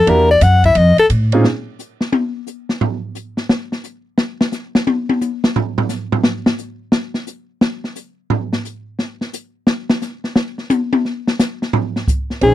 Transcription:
0.00 0.11 A4 medium
0.07 0.41 E2 medium
0.07 0.27 A#3 medium
0.07 0.28 D4 medium
0.07 0.28 E4 medium
0.07 0.28 F#4 medium
0.07 0.28 G4 medium
0.07 0.30 A#4 medium
0.07 kick soft
0.07 ride medium
0.31 0.44 D5 loud
0.41 0.75 F#2 loud
0.41 0.65 F#5 loud
0.41 kick soft
0.41 hi-hat pedal medium
0.41 ride medium
0.64 0.79 E5 medium
0.64 kick soft
0.64 ride soft
0.75 0.96 F2 loud
0.75 0.99 D#5 medium
0.75 kick soft
0.75 ride medium
0.98 1.06 A4 loud
0.98 muted upright bass stroke soft
0.98 ride soft
1.10 1.43 A2 medium
1.10 kick soft
1.10 hi-hat pedal medium
1.10 ride medium
1.32 1.43 A#2 medium
1.32 1.44 C4 medium
1.32 1.43 C#4 medium
1.32 1.44 D#4 medium
1.32 1.44 F4 medium
1.32 1.44 G#4 medium
1.32 ride medium
1.44 snare medium
1.79 hi-hat pedal medium
2.01 snare medium
2.12 high tom loud
2.47 hi-hat pedal medium
2.69 snare soft
2.81 floor tom medium
3.15 hi-hat pedal medium
3.37 snare soft
3.49 snare medium
3.72 snare soft
3.84 hi-hat pedal medium
4.18 snare medium
4.41 snare loud
4.52 snare soft
4.52 hi-hat pedal medium
4.75 snare medium
4.87 high tom loud
5.09 high tom medium
5.21 hi-hat pedal medium
5.21 high tom medium
5.44 snare loud
5.56 floor tom medium
5.78 floor tom loud
5.89 snare soft
5.89 hi-hat pedal medium
6.12 floor tom loud
6.24 snare loud
6.46 snare loud
6.58 hi-hat pedal medium
6.92 snare loud
7.14 snare medium
7.27 hi-hat pedal medium
7.61 snare loud
7.84 snare soft
7.96 hi-hat pedal medium
8.30 floor tom medium
8.53 snare medium
8.65 hi-hat pedal medium
8.99 snare soft
9.21 snare soft
9.33 hi-hat pedal medium
9.67 snare loud
9.90 snare loud
10.02 snare soft
10.02 hi-hat pedal medium
10.24 snare soft
10.36 snare loud
10.58 snare soft
10.70 hi-hat pedal medium
10.70 high tom loud
10.93 high tom loud
11.05 snare soft
11.27 snare medium
11.39 snare medium
11.39 hi-hat pedal medium
11.62 snare medium
11.73 floor tom loud
11.96 snare soft
12.08 kick medium
12.08 hi-hat pedal medium
12.30 snare soft
12.41 12.54 A#1 medium
12.41 12.54 C4 medium
12.41 12.54 C#4 soft
12.41 12.54 D#4 medium
12.41 12.54 G#4 medium
12.41 kick soft
12.41 ride medium

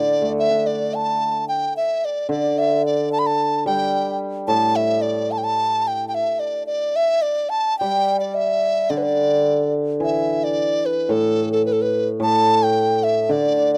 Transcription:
0.00 1.60 D3 soft
0.00 0.32 D5 medium
0.22 1.34 A3 soft
0.39 0.68 E5 medium
0.50 1.62 D4 soft
0.67 0.96 D5 medium
0.94 1.48 A5 medium
1.48 1.74 G5 medium
1.77 2.06 E5 medium
2.05 2.30 D5 medium
2.29 3.94 D3 medium
2.29 2.60 D5 medium
2.58 2.85 E5 medium
2.86 3.11 D5 medium
3.12 3.20 A5 medium
3.19 3.28 B5 medium
3.26 3.66 A5 medium
3.66 5.32 G3 medium
3.66 4.18 G5 medium
4.48 6.16 A2 medium
4.48 4.77 A5 loud
4.76 5.03 E5 medium
5.02 5.33 D5 medium
5.31 5.39 A5 medium
5.38 5.45 G5 medium
5.44 5.89 A5 medium
5.87 6.08 G5 medium
6.08 6.16 G5 medium
6.15 6.41 E5 medium
6.40 6.66 D5 medium
6.67 6.97 D5 medium
6.96 7.23 E5 medium
7.22 7.51 D5 medium
7.49 7.78 A5 medium
7.79 9.46 G3 medium
7.79 8.18 G5 medium
8.20 8.36 D5 medium
8.35 8.92 E5 medium
8.90 10.57 D3 medium
8.90 8.99 D5 medium
8.98 9.05 B4 medium
9.03 9.73 D5 medium
10.00 11.66 E3 soft
10.00 10.45 E5 medium
10.44 10.87 D5 medium
10.86 11.13 B4 medium
11.09 12.19 A2 medium
11.09 11.52 A4 medium
11.52 11.65 A4 medium
11.66 11.74 B4 medium
11.72 11.83 A4 medium
11.82 12.08 B4 medium
12.20 13.30 A2 medium
12.20 12.64 A5 loud
12.63 13.05 G5 medium
13.03 13.33 E5 medium
13.29 13.78 D3 medium
13.29 13.72 D5 medium
13.74 13.76 D5 medium

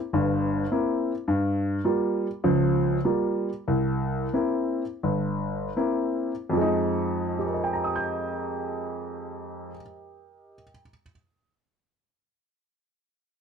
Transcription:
0.13 0.63 G1 medium
0.13 0.63 G2 medium
0.71 1.11 A#3 soft
0.71 1.11 C4 soft
0.71 1.11 E4 medium
1.28 1.78 G2 medium
1.85 2.26 G3 soft
1.85 2.26 A#3 soft
1.85 2.26 F4 medium
2.44 2.97 C#2 medium
2.44 2.97 F3 medium
3.05 3.48 G3 soft
3.05 3.48 A#3 soft
3.05 3.49 F4 soft
3.68 4.25 C2 medium
4.33 4.81 A#3 soft
4.33 4.81 C4 soft
4.33 4.81 E4 soft
5.03 5.67 G1 medium
5.76 6.31 A#3 soft
5.76 6.31 C4 soft
5.76 6.31 E4 soft
6.50 9.69 F2 medium
6.50 9.73 F3 medium
6.57 9.77 G#3 soft
6.61 9.81 D#4 medium
7.39 10.54 G4 soft
7.46 10.61 A#4 soft
7.54 10.70 D#5 soft
7.64 10.79 G5 soft
7.73 10.89 A#5 soft
7.84 11.00 D#6 soft
7.96 11.11 G6 soft

